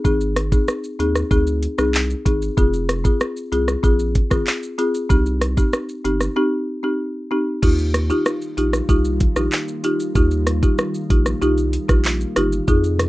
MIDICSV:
0, 0, Header, 1, 5, 480
1, 0, Start_track
1, 0, Key_signature, -3, "major"
1, 0, Tempo, 631579
1, 37, Time_signature, 4, 2, 24, 8
1, 9948, End_track
2, 0, Start_track
2, 0, Title_t, "Marimba"
2, 0, Program_c, 0, 12
2, 34, Note_on_c, 0, 60, 93
2, 37, Note_on_c, 0, 63, 83
2, 39, Note_on_c, 0, 68, 100
2, 161, Note_off_c, 0, 60, 0
2, 162, Note_off_c, 0, 63, 0
2, 163, Note_off_c, 0, 68, 0
2, 393, Note_on_c, 0, 60, 78
2, 396, Note_on_c, 0, 63, 69
2, 398, Note_on_c, 0, 68, 85
2, 726, Note_off_c, 0, 60, 0
2, 728, Note_off_c, 0, 63, 0
2, 729, Note_off_c, 0, 68, 0
2, 753, Note_on_c, 0, 60, 75
2, 756, Note_on_c, 0, 63, 69
2, 759, Note_on_c, 0, 68, 76
2, 976, Note_off_c, 0, 60, 0
2, 977, Note_off_c, 0, 63, 0
2, 979, Note_off_c, 0, 68, 0
2, 993, Note_on_c, 0, 60, 91
2, 995, Note_on_c, 0, 63, 86
2, 998, Note_on_c, 0, 68, 102
2, 1326, Note_off_c, 0, 60, 0
2, 1328, Note_off_c, 0, 63, 0
2, 1329, Note_off_c, 0, 68, 0
2, 1354, Note_on_c, 0, 60, 76
2, 1355, Note_on_c, 0, 63, 67
2, 1358, Note_on_c, 0, 68, 84
2, 1481, Note_off_c, 0, 60, 0
2, 1482, Note_off_c, 0, 63, 0
2, 1483, Note_off_c, 0, 68, 0
2, 1713, Note_on_c, 0, 60, 77
2, 1715, Note_on_c, 0, 63, 75
2, 1717, Note_on_c, 0, 68, 89
2, 1840, Note_off_c, 0, 60, 0
2, 1841, Note_off_c, 0, 63, 0
2, 1842, Note_off_c, 0, 68, 0
2, 1955, Note_on_c, 0, 60, 95
2, 1957, Note_on_c, 0, 65, 87
2, 1959, Note_on_c, 0, 68, 98
2, 2081, Note_off_c, 0, 60, 0
2, 2083, Note_off_c, 0, 65, 0
2, 2084, Note_off_c, 0, 68, 0
2, 2312, Note_on_c, 0, 60, 78
2, 2314, Note_on_c, 0, 65, 71
2, 2317, Note_on_c, 0, 68, 88
2, 2646, Note_off_c, 0, 60, 0
2, 2647, Note_off_c, 0, 65, 0
2, 2649, Note_off_c, 0, 68, 0
2, 2673, Note_on_c, 0, 60, 73
2, 2675, Note_on_c, 0, 65, 67
2, 2678, Note_on_c, 0, 68, 82
2, 2896, Note_off_c, 0, 60, 0
2, 2897, Note_off_c, 0, 65, 0
2, 2898, Note_off_c, 0, 68, 0
2, 2911, Note_on_c, 0, 60, 98
2, 2914, Note_on_c, 0, 65, 83
2, 2916, Note_on_c, 0, 68, 104
2, 3246, Note_off_c, 0, 60, 0
2, 3247, Note_off_c, 0, 65, 0
2, 3248, Note_off_c, 0, 68, 0
2, 3271, Note_on_c, 0, 60, 81
2, 3274, Note_on_c, 0, 65, 73
2, 3277, Note_on_c, 0, 68, 85
2, 3606, Note_off_c, 0, 60, 0
2, 3607, Note_off_c, 0, 65, 0
2, 3608, Note_off_c, 0, 68, 0
2, 3633, Note_on_c, 0, 60, 76
2, 3635, Note_on_c, 0, 65, 74
2, 3638, Note_on_c, 0, 68, 87
2, 3856, Note_off_c, 0, 60, 0
2, 3857, Note_off_c, 0, 65, 0
2, 3858, Note_off_c, 0, 68, 0
2, 3872, Note_on_c, 0, 60, 96
2, 3875, Note_on_c, 0, 63, 85
2, 3876, Note_on_c, 0, 67, 105
2, 4000, Note_off_c, 0, 60, 0
2, 4001, Note_off_c, 0, 63, 0
2, 4002, Note_off_c, 0, 67, 0
2, 4234, Note_on_c, 0, 60, 81
2, 4236, Note_on_c, 0, 63, 71
2, 4239, Note_on_c, 0, 67, 88
2, 4567, Note_off_c, 0, 60, 0
2, 4568, Note_off_c, 0, 63, 0
2, 4569, Note_off_c, 0, 67, 0
2, 4593, Note_on_c, 0, 60, 72
2, 4595, Note_on_c, 0, 63, 70
2, 4597, Note_on_c, 0, 67, 85
2, 4816, Note_off_c, 0, 60, 0
2, 4817, Note_off_c, 0, 63, 0
2, 4818, Note_off_c, 0, 67, 0
2, 4834, Note_on_c, 0, 60, 92
2, 4837, Note_on_c, 0, 63, 83
2, 4839, Note_on_c, 0, 67, 106
2, 5167, Note_off_c, 0, 60, 0
2, 5168, Note_off_c, 0, 63, 0
2, 5169, Note_off_c, 0, 67, 0
2, 5193, Note_on_c, 0, 60, 74
2, 5195, Note_on_c, 0, 63, 71
2, 5198, Note_on_c, 0, 67, 86
2, 5320, Note_off_c, 0, 60, 0
2, 5322, Note_off_c, 0, 63, 0
2, 5323, Note_off_c, 0, 67, 0
2, 5555, Note_on_c, 0, 60, 81
2, 5559, Note_on_c, 0, 63, 77
2, 5560, Note_on_c, 0, 67, 86
2, 5682, Note_off_c, 0, 60, 0
2, 5683, Note_off_c, 0, 63, 0
2, 5684, Note_off_c, 0, 67, 0
2, 5795, Note_on_c, 0, 63, 94
2, 5797, Note_on_c, 0, 65, 86
2, 5799, Note_on_c, 0, 67, 98
2, 5921, Note_off_c, 0, 63, 0
2, 5922, Note_off_c, 0, 65, 0
2, 5923, Note_off_c, 0, 67, 0
2, 6154, Note_on_c, 0, 63, 81
2, 6157, Note_on_c, 0, 65, 73
2, 6160, Note_on_c, 0, 67, 88
2, 6487, Note_off_c, 0, 63, 0
2, 6488, Note_off_c, 0, 65, 0
2, 6490, Note_off_c, 0, 67, 0
2, 6515, Note_on_c, 0, 63, 75
2, 6517, Note_on_c, 0, 65, 67
2, 6520, Note_on_c, 0, 67, 82
2, 6737, Note_off_c, 0, 63, 0
2, 6738, Note_off_c, 0, 65, 0
2, 6740, Note_off_c, 0, 67, 0
2, 6755, Note_on_c, 0, 63, 97
2, 6757, Note_on_c, 0, 65, 91
2, 6760, Note_on_c, 0, 67, 101
2, 7088, Note_off_c, 0, 63, 0
2, 7088, Note_off_c, 0, 65, 0
2, 7090, Note_off_c, 0, 67, 0
2, 7115, Note_on_c, 0, 63, 79
2, 7118, Note_on_c, 0, 65, 72
2, 7122, Note_on_c, 0, 67, 84
2, 7448, Note_off_c, 0, 63, 0
2, 7449, Note_off_c, 0, 65, 0
2, 7451, Note_off_c, 0, 67, 0
2, 7477, Note_on_c, 0, 63, 77
2, 7479, Note_on_c, 0, 65, 71
2, 7482, Note_on_c, 0, 67, 86
2, 7698, Note_off_c, 0, 63, 0
2, 7699, Note_off_c, 0, 65, 0
2, 7700, Note_off_c, 0, 67, 0
2, 7716, Note_on_c, 0, 63, 93
2, 7720, Note_on_c, 0, 65, 85
2, 7722, Note_on_c, 0, 67, 108
2, 7842, Note_off_c, 0, 63, 0
2, 7844, Note_off_c, 0, 65, 0
2, 7845, Note_off_c, 0, 67, 0
2, 8076, Note_on_c, 0, 63, 78
2, 8077, Note_on_c, 0, 65, 72
2, 8080, Note_on_c, 0, 67, 90
2, 8408, Note_off_c, 0, 63, 0
2, 8409, Note_off_c, 0, 65, 0
2, 8410, Note_off_c, 0, 67, 0
2, 8437, Note_on_c, 0, 63, 78
2, 8439, Note_on_c, 0, 65, 68
2, 8440, Note_on_c, 0, 67, 80
2, 8658, Note_off_c, 0, 63, 0
2, 8659, Note_off_c, 0, 65, 0
2, 8660, Note_off_c, 0, 67, 0
2, 8677, Note_on_c, 0, 63, 92
2, 8679, Note_on_c, 0, 65, 86
2, 8681, Note_on_c, 0, 67, 110
2, 9008, Note_off_c, 0, 63, 0
2, 9009, Note_off_c, 0, 65, 0
2, 9010, Note_off_c, 0, 67, 0
2, 9033, Note_on_c, 0, 63, 74
2, 9036, Note_on_c, 0, 65, 72
2, 9038, Note_on_c, 0, 67, 87
2, 9160, Note_off_c, 0, 63, 0
2, 9162, Note_off_c, 0, 65, 0
2, 9163, Note_off_c, 0, 67, 0
2, 9396, Note_on_c, 0, 63, 80
2, 9398, Note_on_c, 0, 65, 73
2, 9401, Note_on_c, 0, 67, 91
2, 9522, Note_off_c, 0, 63, 0
2, 9523, Note_off_c, 0, 65, 0
2, 9524, Note_off_c, 0, 67, 0
2, 9635, Note_on_c, 0, 63, 90
2, 9638, Note_on_c, 0, 65, 86
2, 9640, Note_on_c, 0, 68, 105
2, 9762, Note_off_c, 0, 63, 0
2, 9763, Note_off_c, 0, 65, 0
2, 9764, Note_off_c, 0, 68, 0
2, 9948, End_track
3, 0, Start_track
3, 0, Title_t, "Ambient pad"
3, 0, Program_c, 1, 92
3, 5795, Note_on_c, 1, 65, 86
3, 5796, Note_on_c, 1, 51, 83
3, 5796, Note_on_c, 1, 55, 76
3, 5797, Note_on_c, 1, 58, 71
3, 9606, Note_off_c, 1, 51, 0
3, 9606, Note_off_c, 1, 55, 0
3, 9606, Note_off_c, 1, 65, 0
3, 9607, Note_off_c, 1, 58, 0
3, 9633, Note_on_c, 1, 48, 85
3, 9633, Note_on_c, 1, 56, 74
3, 9634, Note_on_c, 1, 53, 75
3, 9634, Note_on_c, 1, 63, 85
3, 9948, Note_off_c, 1, 48, 0
3, 9948, Note_off_c, 1, 53, 0
3, 9948, Note_off_c, 1, 56, 0
3, 9948, Note_off_c, 1, 63, 0
3, 9948, End_track
4, 0, Start_track
4, 0, Title_t, "Sub bass"
4, 0, Program_c, 2, 38
4, 37, Note_on_c, 2, 32, 115
4, 404, Note_off_c, 2, 32, 0
4, 756, Note_on_c, 2, 39, 87
4, 940, Note_off_c, 2, 39, 0
4, 996, Note_on_c, 2, 38, 104
4, 1271, Note_off_c, 2, 38, 0
4, 1357, Note_on_c, 2, 36, 92
4, 1632, Note_off_c, 2, 36, 0
4, 1716, Note_on_c, 2, 32, 84
4, 1900, Note_off_c, 2, 32, 0
4, 1957, Note_on_c, 2, 29, 110
4, 2324, Note_off_c, 2, 29, 0
4, 2676, Note_on_c, 2, 36, 94
4, 2860, Note_off_c, 2, 36, 0
4, 2915, Note_on_c, 2, 34, 108
4, 3191, Note_off_c, 2, 34, 0
4, 3278, Note_on_c, 2, 32, 85
4, 3369, Note_off_c, 2, 32, 0
4, 3878, Note_on_c, 2, 36, 112
4, 4244, Note_off_c, 2, 36, 0
4, 4597, Note_on_c, 2, 31, 91
4, 4780, Note_off_c, 2, 31, 0
4, 5798, Note_on_c, 2, 39, 114
4, 6164, Note_off_c, 2, 39, 0
4, 6518, Note_on_c, 2, 34, 93
4, 6701, Note_off_c, 2, 34, 0
4, 6756, Note_on_c, 2, 36, 98
4, 7031, Note_off_c, 2, 36, 0
4, 7116, Note_on_c, 2, 34, 92
4, 7208, Note_off_c, 2, 34, 0
4, 7717, Note_on_c, 2, 39, 117
4, 8083, Note_off_c, 2, 39, 0
4, 8438, Note_on_c, 2, 34, 98
4, 8621, Note_off_c, 2, 34, 0
4, 8679, Note_on_c, 2, 36, 108
4, 8953, Note_off_c, 2, 36, 0
4, 9038, Note_on_c, 2, 34, 81
4, 9313, Note_off_c, 2, 34, 0
4, 9399, Note_on_c, 2, 31, 92
4, 9582, Note_off_c, 2, 31, 0
4, 9637, Note_on_c, 2, 41, 104
4, 9948, Note_off_c, 2, 41, 0
4, 9948, End_track
5, 0, Start_track
5, 0, Title_t, "Drums"
5, 37, Note_on_c, 9, 36, 111
5, 38, Note_on_c, 9, 82, 74
5, 113, Note_off_c, 9, 36, 0
5, 114, Note_off_c, 9, 82, 0
5, 158, Note_on_c, 9, 82, 50
5, 234, Note_off_c, 9, 82, 0
5, 276, Note_on_c, 9, 37, 97
5, 277, Note_on_c, 9, 42, 81
5, 277, Note_on_c, 9, 82, 60
5, 352, Note_off_c, 9, 37, 0
5, 353, Note_off_c, 9, 42, 0
5, 353, Note_off_c, 9, 82, 0
5, 397, Note_on_c, 9, 36, 100
5, 397, Note_on_c, 9, 82, 68
5, 473, Note_off_c, 9, 36, 0
5, 473, Note_off_c, 9, 82, 0
5, 516, Note_on_c, 9, 82, 64
5, 519, Note_on_c, 9, 37, 97
5, 592, Note_off_c, 9, 82, 0
5, 595, Note_off_c, 9, 37, 0
5, 637, Note_on_c, 9, 82, 51
5, 713, Note_off_c, 9, 82, 0
5, 760, Note_on_c, 9, 42, 66
5, 760, Note_on_c, 9, 82, 47
5, 836, Note_off_c, 9, 42, 0
5, 836, Note_off_c, 9, 82, 0
5, 878, Note_on_c, 9, 37, 92
5, 878, Note_on_c, 9, 82, 80
5, 954, Note_off_c, 9, 37, 0
5, 954, Note_off_c, 9, 82, 0
5, 995, Note_on_c, 9, 36, 96
5, 998, Note_on_c, 9, 82, 70
5, 1071, Note_off_c, 9, 36, 0
5, 1074, Note_off_c, 9, 82, 0
5, 1117, Note_on_c, 9, 82, 51
5, 1193, Note_off_c, 9, 82, 0
5, 1235, Note_on_c, 9, 42, 72
5, 1235, Note_on_c, 9, 82, 53
5, 1311, Note_off_c, 9, 42, 0
5, 1311, Note_off_c, 9, 82, 0
5, 1356, Note_on_c, 9, 82, 75
5, 1357, Note_on_c, 9, 37, 90
5, 1432, Note_off_c, 9, 82, 0
5, 1433, Note_off_c, 9, 37, 0
5, 1476, Note_on_c, 9, 82, 82
5, 1478, Note_on_c, 9, 39, 96
5, 1552, Note_off_c, 9, 82, 0
5, 1554, Note_off_c, 9, 39, 0
5, 1598, Note_on_c, 9, 82, 56
5, 1674, Note_off_c, 9, 82, 0
5, 1717, Note_on_c, 9, 36, 104
5, 1718, Note_on_c, 9, 42, 81
5, 1718, Note_on_c, 9, 82, 59
5, 1793, Note_off_c, 9, 36, 0
5, 1794, Note_off_c, 9, 42, 0
5, 1794, Note_off_c, 9, 82, 0
5, 1840, Note_on_c, 9, 82, 69
5, 1916, Note_off_c, 9, 82, 0
5, 1957, Note_on_c, 9, 36, 114
5, 1958, Note_on_c, 9, 82, 77
5, 2033, Note_off_c, 9, 36, 0
5, 2034, Note_off_c, 9, 82, 0
5, 2078, Note_on_c, 9, 82, 51
5, 2154, Note_off_c, 9, 82, 0
5, 2196, Note_on_c, 9, 37, 95
5, 2198, Note_on_c, 9, 42, 85
5, 2198, Note_on_c, 9, 82, 62
5, 2272, Note_off_c, 9, 37, 0
5, 2274, Note_off_c, 9, 42, 0
5, 2274, Note_off_c, 9, 82, 0
5, 2317, Note_on_c, 9, 36, 101
5, 2318, Note_on_c, 9, 82, 72
5, 2393, Note_off_c, 9, 36, 0
5, 2394, Note_off_c, 9, 82, 0
5, 2437, Note_on_c, 9, 82, 68
5, 2439, Note_on_c, 9, 37, 102
5, 2513, Note_off_c, 9, 82, 0
5, 2515, Note_off_c, 9, 37, 0
5, 2558, Note_on_c, 9, 82, 50
5, 2634, Note_off_c, 9, 82, 0
5, 2679, Note_on_c, 9, 42, 67
5, 2679, Note_on_c, 9, 82, 46
5, 2755, Note_off_c, 9, 42, 0
5, 2755, Note_off_c, 9, 82, 0
5, 2797, Note_on_c, 9, 37, 91
5, 2798, Note_on_c, 9, 82, 82
5, 2873, Note_off_c, 9, 37, 0
5, 2874, Note_off_c, 9, 82, 0
5, 2916, Note_on_c, 9, 36, 95
5, 2918, Note_on_c, 9, 82, 72
5, 2992, Note_off_c, 9, 36, 0
5, 2994, Note_off_c, 9, 82, 0
5, 3035, Note_on_c, 9, 82, 52
5, 3111, Note_off_c, 9, 82, 0
5, 3155, Note_on_c, 9, 42, 76
5, 3155, Note_on_c, 9, 82, 53
5, 3157, Note_on_c, 9, 36, 99
5, 3231, Note_off_c, 9, 42, 0
5, 3231, Note_off_c, 9, 82, 0
5, 3233, Note_off_c, 9, 36, 0
5, 3276, Note_on_c, 9, 82, 76
5, 3277, Note_on_c, 9, 37, 93
5, 3278, Note_on_c, 9, 36, 93
5, 3352, Note_off_c, 9, 82, 0
5, 3353, Note_off_c, 9, 37, 0
5, 3354, Note_off_c, 9, 36, 0
5, 3395, Note_on_c, 9, 82, 83
5, 3397, Note_on_c, 9, 39, 92
5, 3471, Note_off_c, 9, 82, 0
5, 3473, Note_off_c, 9, 39, 0
5, 3518, Note_on_c, 9, 82, 53
5, 3594, Note_off_c, 9, 82, 0
5, 3638, Note_on_c, 9, 42, 84
5, 3638, Note_on_c, 9, 82, 59
5, 3714, Note_off_c, 9, 42, 0
5, 3714, Note_off_c, 9, 82, 0
5, 3758, Note_on_c, 9, 82, 71
5, 3834, Note_off_c, 9, 82, 0
5, 3877, Note_on_c, 9, 36, 105
5, 3877, Note_on_c, 9, 82, 74
5, 3953, Note_off_c, 9, 36, 0
5, 3953, Note_off_c, 9, 82, 0
5, 3998, Note_on_c, 9, 82, 51
5, 4074, Note_off_c, 9, 82, 0
5, 4115, Note_on_c, 9, 37, 95
5, 4116, Note_on_c, 9, 42, 80
5, 4116, Note_on_c, 9, 82, 63
5, 4191, Note_off_c, 9, 37, 0
5, 4192, Note_off_c, 9, 42, 0
5, 4192, Note_off_c, 9, 82, 0
5, 4236, Note_on_c, 9, 82, 74
5, 4237, Note_on_c, 9, 36, 98
5, 4312, Note_off_c, 9, 82, 0
5, 4313, Note_off_c, 9, 36, 0
5, 4355, Note_on_c, 9, 82, 64
5, 4357, Note_on_c, 9, 37, 100
5, 4431, Note_off_c, 9, 82, 0
5, 4433, Note_off_c, 9, 37, 0
5, 4476, Note_on_c, 9, 82, 51
5, 4552, Note_off_c, 9, 82, 0
5, 4598, Note_on_c, 9, 42, 68
5, 4598, Note_on_c, 9, 82, 47
5, 4674, Note_off_c, 9, 42, 0
5, 4674, Note_off_c, 9, 82, 0
5, 4716, Note_on_c, 9, 37, 88
5, 4717, Note_on_c, 9, 82, 84
5, 4792, Note_off_c, 9, 37, 0
5, 4793, Note_off_c, 9, 82, 0
5, 5797, Note_on_c, 9, 36, 112
5, 5797, Note_on_c, 9, 49, 96
5, 5797, Note_on_c, 9, 82, 75
5, 5873, Note_off_c, 9, 36, 0
5, 5873, Note_off_c, 9, 49, 0
5, 5873, Note_off_c, 9, 82, 0
5, 5918, Note_on_c, 9, 82, 54
5, 5994, Note_off_c, 9, 82, 0
5, 6036, Note_on_c, 9, 37, 97
5, 6037, Note_on_c, 9, 42, 87
5, 6037, Note_on_c, 9, 82, 60
5, 6112, Note_off_c, 9, 37, 0
5, 6113, Note_off_c, 9, 42, 0
5, 6113, Note_off_c, 9, 82, 0
5, 6156, Note_on_c, 9, 82, 71
5, 6232, Note_off_c, 9, 82, 0
5, 6275, Note_on_c, 9, 82, 68
5, 6278, Note_on_c, 9, 37, 104
5, 6351, Note_off_c, 9, 82, 0
5, 6354, Note_off_c, 9, 37, 0
5, 6397, Note_on_c, 9, 82, 51
5, 6473, Note_off_c, 9, 82, 0
5, 6519, Note_on_c, 9, 42, 68
5, 6519, Note_on_c, 9, 82, 47
5, 6595, Note_off_c, 9, 42, 0
5, 6595, Note_off_c, 9, 82, 0
5, 6637, Note_on_c, 9, 37, 94
5, 6638, Note_on_c, 9, 82, 82
5, 6713, Note_off_c, 9, 37, 0
5, 6714, Note_off_c, 9, 82, 0
5, 6756, Note_on_c, 9, 36, 94
5, 6758, Note_on_c, 9, 82, 74
5, 6832, Note_off_c, 9, 36, 0
5, 6834, Note_off_c, 9, 82, 0
5, 6876, Note_on_c, 9, 82, 55
5, 6952, Note_off_c, 9, 82, 0
5, 6995, Note_on_c, 9, 42, 75
5, 6995, Note_on_c, 9, 82, 54
5, 6998, Note_on_c, 9, 36, 102
5, 7071, Note_off_c, 9, 42, 0
5, 7071, Note_off_c, 9, 82, 0
5, 7074, Note_off_c, 9, 36, 0
5, 7115, Note_on_c, 9, 82, 76
5, 7116, Note_on_c, 9, 37, 92
5, 7191, Note_off_c, 9, 82, 0
5, 7192, Note_off_c, 9, 37, 0
5, 7235, Note_on_c, 9, 82, 85
5, 7237, Note_on_c, 9, 39, 94
5, 7311, Note_off_c, 9, 82, 0
5, 7313, Note_off_c, 9, 39, 0
5, 7358, Note_on_c, 9, 82, 56
5, 7434, Note_off_c, 9, 82, 0
5, 7477, Note_on_c, 9, 42, 81
5, 7477, Note_on_c, 9, 82, 60
5, 7553, Note_off_c, 9, 42, 0
5, 7553, Note_off_c, 9, 82, 0
5, 7599, Note_on_c, 9, 82, 72
5, 7675, Note_off_c, 9, 82, 0
5, 7717, Note_on_c, 9, 36, 115
5, 7717, Note_on_c, 9, 82, 77
5, 7793, Note_off_c, 9, 36, 0
5, 7793, Note_off_c, 9, 82, 0
5, 7837, Note_on_c, 9, 82, 51
5, 7913, Note_off_c, 9, 82, 0
5, 7955, Note_on_c, 9, 37, 95
5, 7956, Note_on_c, 9, 42, 86
5, 7956, Note_on_c, 9, 82, 62
5, 8031, Note_off_c, 9, 37, 0
5, 8032, Note_off_c, 9, 42, 0
5, 8032, Note_off_c, 9, 82, 0
5, 8077, Note_on_c, 9, 36, 97
5, 8077, Note_on_c, 9, 82, 71
5, 8153, Note_off_c, 9, 36, 0
5, 8153, Note_off_c, 9, 82, 0
5, 8196, Note_on_c, 9, 82, 66
5, 8198, Note_on_c, 9, 37, 104
5, 8272, Note_off_c, 9, 82, 0
5, 8274, Note_off_c, 9, 37, 0
5, 8318, Note_on_c, 9, 82, 53
5, 8394, Note_off_c, 9, 82, 0
5, 8438, Note_on_c, 9, 36, 105
5, 8439, Note_on_c, 9, 42, 66
5, 8439, Note_on_c, 9, 82, 48
5, 8514, Note_off_c, 9, 36, 0
5, 8515, Note_off_c, 9, 42, 0
5, 8515, Note_off_c, 9, 82, 0
5, 8557, Note_on_c, 9, 37, 92
5, 8558, Note_on_c, 9, 82, 84
5, 8633, Note_off_c, 9, 37, 0
5, 8634, Note_off_c, 9, 82, 0
5, 8678, Note_on_c, 9, 82, 73
5, 8754, Note_off_c, 9, 82, 0
5, 8797, Note_on_c, 9, 82, 52
5, 8873, Note_off_c, 9, 82, 0
5, 8916, Note_on_c, 9, 42, 75
5, 8916, Note_on_c, 9, 82, 54
5, 8992, Note_off_c, 9, 42, 0
5, 8992, Note_off_c, 9, 82, 0
5, 9037, Note_on_c, 9, 37, 95
5, 9037, Note_on_c, 9, 82, 76
5, 9038, Note_on_c, 9, 36, 96
5, 9113, Note_off_c, 9, 37, 0
5, 9113, Note_off_c, 9, 82, 0
5, 9114, Note_off_c, 9, 36, 0
5, 9155, Note_on_c, 9, 82, 83
5, 9157, Note_on_c, 9, 39, 96
5, 9231, Note_off_c, 9, 82, 0
5, 9233, Note_off_c, 9, 39, 0
5, 9278, Note_on_c, 9, 82, 56
5, 9354, Note_off_c, 9, 82, 0
5, 9395, Note_on_c, 9, 37, 104
5, 9396, Note_on_c, 9, 42, 87
5, 9396, Note_on_c, 9, 82, 58
5, 9471, Note_off_c, 9, 37, 0
5, 9472, Note_off_c, 9, 42, 0
5, 9472, Note_off_c, 9, 82, 0
5, 9517, Note_on_c, 9, 82, 74
5, 9593, Note_off_c, 9, 82, 0
5, 9636, Note_on_c, 9, 82, 74
5, 9637, Note_on_c, 9, 36, 111
5, 9712, Note_off_c, 9, 82, 0
5, 9713, Note_off_c, 9, 36, 0
5, 9757, Note_on_c, 9, 82, 52
5, 9833, Note_off_c, 9, 82, 0
5, 9875, Note_on_c, 9, 37, 97
5, 9877, Note_on_c, 9, 42, 84
5, 9877, Note_on_c, 9, 82, 61
5, 9948, Note_off_c, 9, 37, 0
5, 9948, Note_off_c, 9, 42, 0
5, 9948, Note_off_c, 9, 82, 0
5, 9948, End_track
0, 0, End_of_file